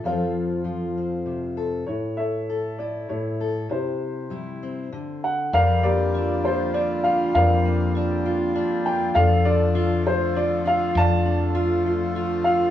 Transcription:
<<
  \new Staff \with { instrumentName = "Upright piano" } { \time 3/4 \key f \major \tempo 4 = 99 << { f''2~ f''8 r8 | cis''8 e''4 d''8 cis''4 | c''2~ c''8 ges''8 | \key g \dorian f''8 d''4 c''8 d''8 f''8 |
f''4 r4. g''8 | f''8 d''4 c''8 d''8 f''8 | a''4 r4. f''8 | } \\ { <a' c''>2~ <a' c''>8 r8 | <e' a'>8 <a' cis''>4. <e' a'>4 | <e' g'>2 r4 | <bes' d''>8 <g' bes'>4. r4 |
<bes' d''>4. r4. | <a' d''>8 <f' a'>4. r4 | <d'' f''>4. r4. | } >> }
  \new Staff \with { instrumentName = "Steel-string acoustic guitar" } { \time 3/4 \key f \major << { <f c' f' a'>4 f'8 c'4 a'8 | r4 a'8 e'4 a'8 | r4 e'8 c'8 r4 | \key g \dorian r8 bes8 d'8 f'8 d'8 f'8~ |
f'8 bes8 d'8 f'8 d'8 f'8~ | f'8 d'8 f'8 f'8 f'8 f'8~ | f'8 d'8 f'8 f'8 f'8 f'8 | } \\ { f,4 f4 c4 | a,2 a,4 | c4 g4 d4 | f,2. |
f,2. | f,2. | f,2. | } >> }
  \new Staff \with { instrumentName = "Vibraphone" } { \time 3/4 \key f \major r2. | r2. | r2. | \key g \dorian f8 d'8 f'8 bes8 f'8 d'8 |
f8 d'8 f'8 bes8 f'8 d'8 | f8 d'8 f'8 a8 f'8 d'8 | f8 d'8 f'8 a8 f'8 d'8 | }
  \new Staff \with { instrumentName = "Harmonium" } { \time 3/4 \key f \major r2. | r2. | r2. | \key g \dorian <d g bes f' g'>2.~ |
<d g bes f' g'>2. | <d f a f' a'>2.~ | <d f a f' a'>2. | }
  \new Staff \with { instrumentName = "Fretless electric bass" } { \clef bass \time 3/4 \key f \major r2. | r2. | r2. | \key g \dorian f,2. |
f,2. | f,2. | f,2. | }
>>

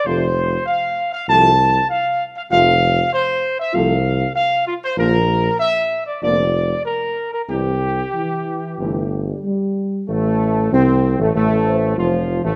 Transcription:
<<
  \new Staff \with { instrumentName = "Trumpet section" } { \time 4/4 \key f \major \tempo 4 = 96 c''4 f''8. f''16 a''4 f''8. f''16 | f''4 c''8. e''16 f''4 f''8 f'16 c''16 | bes'4 e''8. d''16 d''4 bes'8. bes'16 | g'2. r4 |
a4 c'8. a16 a4 f'8. a16 | }
  \new Staff \with { instrumentName = "French horn section" } { \time 4/4 \key f \major <a f'>8 r4. <a f'>8 r4. | <a f'>8 r4. <a f'>8 r4. | <bes f'>8 r4. <bes f'>8 r4. | <g c'>8 r8 e4 a8. g16 g4 |
r2 a'8 c''4. | }
  \new Staff \with { instrumentName = "Trombone section" } { \clef bass \time 4/4 \key f \major <c f>8 r4. <c f>8 r4. | <c f>8 r4. <c f>8 r4. | <d f>8 r4. <d f>8 r4. | <c e>8 r4. <c e>8 r4. |
a4 c'8. a16 a4 f8. a16 | }
  \new Staff \with { instrumentName = "Tuba" } { \clef bass \time 4/4 \key f \major f,,4 r4 c,4 r4 | f,,4 r4 c,4 r4 | bes,,4 r4 f,,4 r4 | c,4 r4 g,,4 r4 |
a,,4 c,8. a,,16 a,,4 f,,8. a,,16 | }
>>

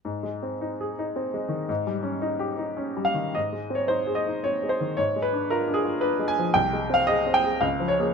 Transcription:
\new Staff \with { instrumentName = "Grand piano" } { \time 3/4 \key aes \major \tempo 4 = 111 << { r2. | r2 r8 f''8 | ees''8. des''16 c''8 ees''8 des''8 c''8 | des''8 ces''8 bes'8 aes'8 ces''8 aes''8 |
g''8. f''16 ees''8 g''8 f''8 des''8 | } \\ { \tuplet 3/2 { aes,8 aes8 c'8 ees'8 aes'8 ees'8 c'8 aes8 ees8 } | \tuplet 3/2 { aes,8 g8 des'8 ees'8 g'8 ees'8 des'8 g8 ees8 } | \tuplet 3/2 { aes,8 aes8 c'8 ees'8 aes'8 ees'8 c'8 aes8 ees8 } | \tuplet 3/2 { aes,8 aes8 d'8 f'8 d'8 f'8 d'8 aes8 f8 } |
\tuplet 3/2 { c,8 aes8 c'8 aes'8 c'8 aes'8 des,8 f8 <bes aes'>8 } | } >> }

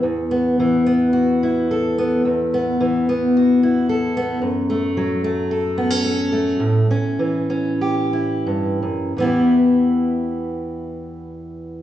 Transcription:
\new Staff \with { instrumentName = "Steel-string acoustic guitar" } { \time 4/4 \key e \dorian \tempo 4 = 108 << { r8 b4 b8 fis'8 e'8 a'8 b8 | r8 b4 b8 fis'8 e'8 a'8 b8 | r8 a4 a8 a'8 b16 cis'16 a'8 a8~ | a8 cis'4 cis'8 g'8 e'4. |
<e b e' g'>1 | } \\ { <e, e>4 e2. | e,4 e2. | fis,4 fis2. | a,4 e2 g,8 fis,8 |
e,1 | } >> }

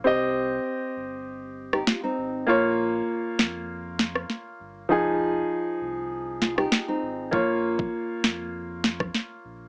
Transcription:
<<
  \new Staff \with { instrumentName = "Grand piano" } { \time 4/4 \key bes \dorian \tempo 4 = 99 <c' g' ees''>1 | <bes f' des''>1 | <f ees' aes'>1 | <bes f' des''>1 | }
  \new Staff \with { instrumentName = "Nylon-string guitar" } { \time 4/4 \key bes \dorian r2 r8. <ees' g'>16 f'16 <c' ees'>8. | r1 | r2 r8 f'16 <ees' g'>8 <c' ees'>8. | r1 | }
  \new Staff \with { instrumentName = "Sub bass" } { \clef bass \time 4/4 \key bes \dorian c,4 r8 g,,4. r8 aes,,8 | bes,,4 r8 f,4. r8 g,,8 | f,,4 r8 c,4. r8 aes,,8 | bes,,4 r8 f,4. r8 bes,,8 | }
  \new DrumStaff \with { instrumentName = "Drums" } \drummode { \time 4/4 r4 r4 r8. ss16 sn4 | r4 r8 sn8 r8 sn16 ss16 sn4 | r4 r4 r8 sn16 ss16 sn4 | bd8. bd16 r8 sn8 r8 sn16 <bd ss>16 sn4 | }
>>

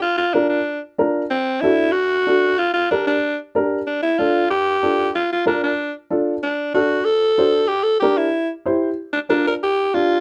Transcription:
<<
  \new Staff \with { instrumentName = "Upright piano" } { \time 4/4 \key bes \lydian \tempo 4 = 188 r4 <d' f' bes'>8 r4. <d' f' bes'>8 r8 | r4 <d' fis' a'>8 r4. <d' fis' a'>8 r8 | r4 <d' g' bes'>8 r4. <d' g' bes'>8 r8 | r4 <d' f' a'>8 r4. <d' f' a'>8 r8 |
r4 <d' f' bes'>8 r4. <d' f' a'>8 r8 | r4 <d' fis' a'>8 r4. <d' fis' c''>8 r8 | r4 <d' g' bes'>8 r4. <e' g' c''>8 r8 | r4 <d' f' bes'>8 r4. <d' f' g'>8 r8 | }
  \new Staff \with { instrumentName = "Alto saxophone" } { \time 4/4 \key bes \lydian f'8 f'8 d'8 d'4 r4. | c'4 e'4 fis'2 | f'8 f'8 d'8 d'4 r4. | d'8 e'8 f'4 g'2 |
f'8 f'8 d'8 d'4 r4. | d'4 fis'4 a'2 | g'8 a'8 g'8 e'4 r4. | r8 d'8 d'8 bes'8 g'4 f'4 | }
>>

